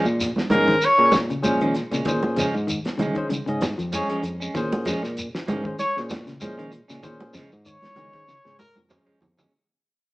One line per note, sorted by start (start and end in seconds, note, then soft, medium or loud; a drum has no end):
0.05 0.29 A#2 medium
0.05 muted clean electric guitar stroke medium
0.05 shekere soft
0.20 snare soft
0.20 closed hi-hat medium
0.20 shekere loud
0.36 muted fingered electric bass stroke soft
0.36 muted clean electric guitar stroke soft
0.36 snare medium
0.36 high conga medium
0.50 0.74 G#2 medium
0.50 0.68 F3 medium
0.50 0.68 G#3 medium
0.50 0.68 C#4 medium
0.50 0.86 A#4 medium
0.50 closed hi-hat soft
0.50 high conga medium
0.50 low conga medium
0.50 shekere soft
0.66 0.86 D#3 medium
0.66 0.77 C#4 medium
0.66 0.77 G#4 medium
0.66 0.77 C5 medium
0.66 muted clean electric guitar stroke soft
0.66 kick medium
0.66 snare soft
0.81 1.14 C#5 medium
0.81 muted clean electric guitar stroke soft
0.81 closed hi-hat medium
0.81 shekere medium
0.98 1.33 A#2 medium
0.98 1.13 C#4 medium
0.98 1.13 G#4 medium
0.98 1.13 A#4 medium
0.98 muted clean electric guitar stroke soft
1.12 muted clean electric guitar stroke soft
1.12 snare medium
1.12 closed hi-hat soft
1.12 high conga loud
1.12 shekere medium
1.30 1.48 C#3 medium
1.30 closed hi-hat soft
1.30 shekere soft
1.42 1.81 A#2 medium
1.42 1.61 F3 medium
1.42 1.60 G#3 medium
1.42 1.66 C#4 medium
1.42 1.60 C#4 medium
1.42 1.66 G#4 medium
1.42 1.66 C5 medium
1.42 closed hi-hat medium
1.42 high conga medium
1.42 shekere medium
1.61 1.80 D#3 medium
1.61 1.74 F3 medium
1.61 1.74 G#3 medium
1.61 1.75 C#4 medium
1.61 closed hi-hat soft
1.74 muted clean electric guitar stroke soft
1.74 snare soft
1.74 closed hi-hat soft
1.74 shekere soft
1.91 2.02 A#2 medium
1.91 2.01 C#3 medium
1.91 2.10 G#3 soft
1.91 2.10 C#4 medium
1.91 snare soft
1.91 closed hi-hat soft
1.91 shekere medium
2.05 2.43 A#2 medium
2.05 2.24 D#3 medium
2.05 2.46 C#4 medium
2.05 2.46 G#4 medium
2.05 2.46 C5 loud
2.05 kick loud
2.05 snare soft
2.05 closed hi-hat medium
2.05 low conga medium
2.05 shekere medium
2.23 muted clean electric guitar stroke soft
2.23 high conga medium
2.36 2.55 C#3 medium
2.36 2.55 F3 medium
2.36 2.55 G#3 medium
2.36 2.54 C#4 medium
2.36 kick medium
2.36 snare medium
2.36 closed hi-hat medium
2.36 shekere medium
2.54 2.78 G#2 medium
2.54 muted clean electric guitar stroke medium
2.54 shekere soft
2.67 2.86 D#3 medium
2.67 closed hi-hat medium
2.67 shekere loud
2.85 muted clean electric guitar stroke medium
2.85 muted fingered electric bass stroke soft
2.85 snare medium
2.85 closed hi-hat soft
2.85 high conga medium
2.98 3.08 C#3 medium
2.98 3.36 D#3 medium
2.98 3.17 F3 medium
2.98 3.17 G#3 medium
2.98 3.16 C#4 medium
2.98 closed hi-hat medium
2.98 high conga medium
2.98 low conga medium
3.02 shekere soft
3.15 3.23 D#3 medium
3.15 3.27 C#4 medium
3.15 3.27 G#4 medium
3.15 3.27 C5 medium
3.15 muted clean electric guitar stroke soft
3.15 kick medium
3.15 closed hi-hat soft
3.29 3.40 C#3 medium
3.29 muted clean electric guitar stroke soft
3.29 closed hi-hat medium
3.29 high conga medium
3.29 shekere medium
3.46 3.72 G#2 medium
3.46 3.65 C#3 medium
3.46 3.63 C#4 medium
3.46 3.63 G#4 medium
3.46 3.63 D#5 loud
3.46 muted clean electric guitar stroke soft
3.46 closed hi-hat soft
3.61 muted clean electric guitar stroke soft
3.61 snare medium
3.61 closed hi-hat medium
3.61 high conga loud
3.61 shekere medium
3.78 4.03 F2 medium
3.78 3.96 F3 medium
3.78 closed hi-hat soft
3.78 shekere soft
3.92 4.09 F3 medium
3.92 4.09 G#3 medium
3.92 4.09 C#4 medium
3.92 4.16 C#4 medium
3.92 4.17 G#4 medium
3.92 4.17 C#5 medium
3.92 closed hi-hat medium
3.92 high conga medium
3.92 shekere medium
4.09 4.22 F3 medium
4.09 4.22 G#3 medium
4.09 4.23 C#4 medium
4.09 closed hi-hat soft
4.23 4.47 F2 medium
4.23 muted clean electric guitar stroke soft
4.23 closed hi-hat soft
4.23 shekere soft
4.40 4.59 G#3 soft
4.40 4.58 C#4 medium
4.40 shekere medium
4.55 4.92 A#2 medium
4.55 4.73 D#3 loud
4.55 4.94 C#4 medium
4.55 4.95 G#4 medium
4.55 4.95 C5 loud
4.55 kick loud
4.55 snare soft
4.55 closed hi-hat medium
4.55 low conga medium
4.55 shekere medium
4.72 muted clean electric guitar stroke soft
4.72 closed hi-hat soft
4.72 high conga loud
4.85 5.03 F3 medium
4.85 5.05 F3 medium
4.85 5.03 G#3 loud
4.85 5.02 C#4 loud
4.85 kick medium
4.85 snare medium
4.85 closed hi-hat medium
4.85 shekere medium
5.03 5.27 A#2 medium
5.03 muted clean electric guitar stroke medium
5.03 snare soft
5.03 shekere soft
5.17 closed hi-hat medium
5.17 shekere medium
5.34 muted fingered electric bass stroke soft
5.34 muted clean electric guitar stroke soft
5.34 snare medium
5.47 5.72 G#2 medium
5.47 5.65 F3 medium
5.47 5.64 G#3 medium
5.47 5.64 C#4 medium
5.47 5.65 A#4 medium
5.47 closed hi-hat medium
5.47 high conga medium
5.47 low conga medium
5.47 shekere soft
5.64 5.83 D#3 medium
5.64 5.76 C#4 medium
5.64 5.75 G#4 medium
5.64 5.76 C5 medium
5.64 muted clean electric guitar stroke soft
5.64 kick medium
5.79 5.98 C#5 medium
5.79 muted clean electric guitar stroke soft
5.79 closed hi-hat medium
5.79 high conga medium
5.79 shekere medium
5.96 6.32 A#2 loud
5.96 6.11 C#4 medium
5.96 6.12 G#4 medium
5.96 6.12 C5 medium
5.96 muted clean electric guitar stroke soft
5.96 snare soft
6.10 muted clean electric guitar stroke soft
6.10 snare medium
6.10 closed hi-hat medium
6.10 high conga loud
6.10 shekere medium
6.27 6.45 C#3 medium
6.27 snare soft
6.27 closed hi-hat soft
6.27 shekere soft
6.40 6.79 A#2 medium
6.40 6.57 F3 medium
6.40 6.57 G#3 medium
6.40 6.64 C#4 medium
6.40 6.64 G#4 medium
6.40 6.65 C5 medium
6.40 muted clean electric guitar stroke medium
6.40 closed hi-hat medium
6.40 high conga medium
6.40 shekere medium
6.58 6.77 D#3 medium
6.58 6.71 F3 medium
6.58 6.71 G#3 medium
6.58 6.72 C#4 medium
6.58 closed hi-hat soft
6.71 muted clean electric guitar stroke soft
6.71 closed hi-hat soft
6.71 shekere soft
6.88 7.01 A#2 medium
6.88 6.98 C#3 medium
6.88 7.07 G#3 soft
6.88 7.06 C#4 medium
6.88 snare soft
6.88 closed hi-hat soft
6.88 shekere medium
7.03 7.41 A#2 medium
7.03 7.22 D#3 medium
7.03 7.42 C#4 medium
7.03 7.42 G#4 medium
7.03 7.43 C5 loud
7.03 kick loud
7.03 closed hi-hat medium
7.03 low conga medium
7.03 shekere medium
7.20 muted clean electric guitar stroke soft
7.20 high conga loud
7.33 7.53 C#3 medium
7.33 7.51 F3 medium
7.33 7.50 G#3 medium
7.33 7.50 C#4 medium
7.33 kick medium
7.33 snare medium
7.33 closed hi-hat soft
7.33 shekere loud
7.51 7.76 G#2 loud
7.51 muted clean electric guitar stroke soft
7.51 shekere soft
7.66 7.84 D#3 medium
7.66 8.55 C#5 medium
7.66 closed hi-hat medium
7.66 shekere medium
7.81 muted clean electric guitar stroke soft
7.81 snare medium
7.81 closed hi-hat soft
7.81 high conga medium
7.96 8.07 C#3 medium
7.96 8.34 D#3 medium
7.96 8.14 F3 medium
7.96 8.13 G#3 medium
7.96 8.12 C#4 medium
7.96 closed hi-hat soft
7.96 high conga medium
7.96 low conga medium
7.96 shekere soft
8.13 8.22 D#3 medium
8.13 8.23 C#4 medium
8.13 8.23 G#4 medium
8.13 8.24 C5 medium
8.13 muted clean electric guitar stroke soft
8.13 kick medium
8.13 snare soft
8.13 closed hi-hat soft
8.28 8.39 C#3 medium
8.28 muted clean electric guitar stroke soft
8.28 snare soft
8.28 shekere medium
8.44 8.69 G#2 medium
8.44 8.64 C#3 medium
8.44 8.60 C#4 medium
8.44 8.60 G#4 medium
8.44 8.60 C5 medium
8.44 muted clean electric guitar stroke soft
8.44 snare medium
8.59 8.78 A#4 loud
8.59 high tom medium
8.59 high conga loud
8.59 shekere medium
8.76 9.00 F2 medium
8.76 8.95 F3 medium
8.76 high tom medium
8.76 high conga medium
8.76 shekere soft
8.88 9.06 F3 medium
8.88 9.05 G#3 medium
8.88 9.12 C#4 medium
8.88 9.05 C#4 medium
8.88 9.12 G#4 medium
8.88 9.12 C5 medium
8.88 mid tom medium
8.88 low conga medium
8.88 shekere medium
9.06 9.20 F3 medium
9.06 9.20 G#3 medium
9.06 9.20 C#4 medium
9.06 mid tom medium
9.21 9.45 F2 medium
9.21 muted clean electric guitar stroke soft
9.21 floor tom medium
9.21 low conga medium
9.21 shekere soft
9.37 9.53 G#3 soft
9.37 9.52 C#4 medium
9.37 floor tom medium
9.37 low conga loud
9.37 shekere medium